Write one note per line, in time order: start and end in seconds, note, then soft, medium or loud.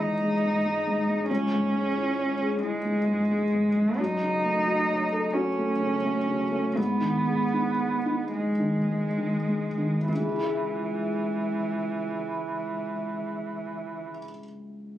0.00 1.26 C#2 soft
0.00 0.44 G#2 soft
0.00 0.33 E3 soft
0.00 0.22 G#3 soft
0.00 1.28 D#4 medium
0.00 1.32 E4 soft
0.00 0.12 G#4 soft
0.00 1.31 C#5 soft
0.22 0.56 G#3 soft
0.44 0.78 G#2 soft
0.87 1.21 G#2 soft
1.09 1.44 G#3 soft
1.29 3.95 C#2 soft
1.29 2.59 C#4 medium
1.53 1.88 G#2 soft
1.75 2.10 G#3 soft
1.97 2.32 E4 soft
2.19 2.54 C#5 soft
2.42 2.76 G#4 soft
2.62 4.00 G#3 medium
2.62 2.98 E4 soft
2.85 3.21 G#3 soft
3.07 3.44 G#2 soft
3.31 3.67 G#3 soft
3.54 3.90 G#2 soft
3.77 3.99 G#3 soft
3.99 6.74 F#2 medium
3.99 5.35 D#4 medium
4.22 4.58 C#3 soft
4.45 4.80 A3 soft
4.67 5.03 F#4 soft
4.90 5.26 C#5 soft
5.12 5.48 A4 soft
5.33 6.78 C#4 medium
5.33 5.71 F#4 soft
5.58 5.95 A3 soft
5.80 6.18 C#3 soft
6.04 6.43 A3 soft
6.28 6.67 C#3 soft
6.52 6.77 A3 soft
6.76 10.05 G#2 soft
6.76 8.33 B3 medium
7.01 7.42 D#3 soft
7.27 7.69 G#3 soft
7.53 7.96 D#4 soft
7.79 8.23 G#4 soft
8.06 8.50 D#4 soft
8.33 10.06 G#3 medium
8.33 8.78 G#3 soft
8.60 9.06 D#3 soft
8.89 9.36 G#3 soft
9.18 9.66 D#3 soft
9.48 9.97 G#3 soft
9.78 10.09 D#3 soft
10.08 14.09 C#2 soft
10.08 14.10 E3 soft
10.15 14.16 C#3 soft
10.22 14.23 G#3 soft
10.29 14.30 E4 soft
10.36 14.37 G#4 soft
10.43 14.44 E5 soft